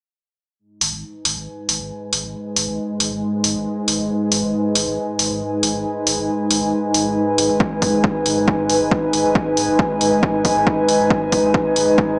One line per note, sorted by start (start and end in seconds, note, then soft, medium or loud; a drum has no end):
0.59 12.19 G#2 medium
0.59 12.19 G#3 medium
0.59 12.19 D#4 medium
0.81 0.92 G#1 loud
0.81 open hi-hat loud
0.92 1.03 G#1 medium
0.97 12.19 B4 medium
0.97 12.19 G#5 medium
1.25 1.35 G#1 loud
1.25 open hi-hat loud
1.36 1.47 G#1 medium
1.69 1.79 G#1 loud
1.69 open hi-hat loud
1.80 1.91 G#1 medium
2.13 2.23 G#1 loud
2.13 open hi-hat loud
2.24 2.34 G#1 medium
2.56 2.67 G#1 loud
2.56 open hi-hat loud
2.67 2.78 G#1 medium
3.00 3.11 G#1 loud
3.00 open hi-hat loud
3.11 3.22 G#1 medium
3.44 3.54 G#1 medium
3.44 open hi-hat loud
3.55 3.66 G#1 medium
3.88 3.98 G#1 loud
3.88 open hi-hat loud
3.99 4.10 G#1 medium
4.32 4.42 G#1 loud
4.32 open hi-hat loud
4.43 4.53 G#1 medium
4.75 4.86 G#1 loud
4.75 open hi-hat loud
4.86 4.97 G#1 medium
5.19 5.29 G#1 loud
5.19 open hi-hat loud
5.30 5.41 G#1 medium
5.63 5.73 G#1 loud
5.63 open hi-hat loud
5.74 5.85 G#1 medium
6.07 6.17 G#1 loud
6.07 open hi-hat loud
6.18 6.28 G#1 medium
6.51 6.61 G#1 loud
6.51 open hi-hat loud
6.61 6.72 G#1 medium
6.94 7.05 G#1 loud
6.94 open hi-hat loud
7.05 7.16 G#1 medium
7.38 7.49 G#1 loud
7.38 open hi-hat loud
7.49 7.60 G#1 medium
7.60 kick loud
7.82 7.92 G#1 loud
7.82 kick medium
7.82 open hi-hat loud
7.93 8.04 G#1 medium
8.04 kick loud
8.26 8.36 G#1 loud
8.26 open hi-hat loud
8.37 8.47 G#1 medium
8.48 kick loud
8.69 8.80 G#1 loud
8.69 open hi-hat loud
8.80 8.91 G#1 medium
8.91 kick loud
9.13 9.24 G#1 loud
9.13 open hi-hat loud
9.24 9.35 G#1 medium
9.35 kick loud
9.57 9.67 G#1 loud
9.57 open hi-hat loud
9.68 9.79 G#1 medium
9.79 kick loud
10.01 10.11 G#1 medium
10.01 open hi-hat loud
10.12 10.23 G#1 medium
10.23 kick loud
10.45 10.55 G#1 loud
10.45 kick medium
10.45 open hi-hat loud
10.56 10.66 G#1 medium
10.67 kick loud
10.88 10.99 G#1 loud
10.88 open hi-hat medium
10.99 11.10 G#1 medium
11.10 kick loud
11.32 11.43 G#1 loud
11.32 kick medium
11.32 open hi-hat loud
11.43 11.54 G#1 medium
11.54 kick loud
11.76 11.87 G#1 loud
11.76 open hi-hat loud
11.87 11.98 G#1 medium
11.98 kick loud